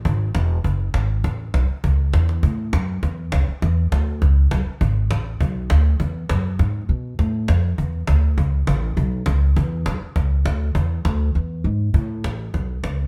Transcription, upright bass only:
\new Staff \with { instrumentName = "Upright bass" } { \clef bass \time 4/4 \key a \major \tempo 4 = 202 gis,,4 e,,4 fis,,4 gis,,4 | a,,4 b,,8 r8 cis,4 e,4 | \key e \mixolydian a,4 fis,4 e,4 cis,8 r8 | e,4 d,4 cis,4 b,,8 r8 |
gis,,4 a,,4 b,,4 d,4 | e,4 fis,4 gis,4 b,4 | a,4 f,4 e,4 d,4 | cis,4 a,,4 b,,4 cis,4 |
e,4 b,,8 r8 cis,4 d,4 | e,4 d,4 e,4 gis,4 | \key a \major a,4 a,,4 b,,4 cis,4 | }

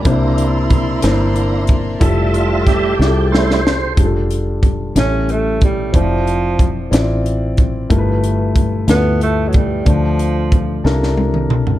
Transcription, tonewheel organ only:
\new Staff \with { instrumentName = "Tonewheel organ" } { \time 6/8 \key f \major \tempo 4. = 61 << { r8 e'2~ e'8 | r8 f'8 g'4 c''4 | r2. | r2. |
r2. | r2. | } \\ { <bes d' e'>8 r4. <bes d' e'>8 r8 | <g a e''>4. r8 <g a e'>8 r8 | r2. | r2. |
r2. | r2. | } >> }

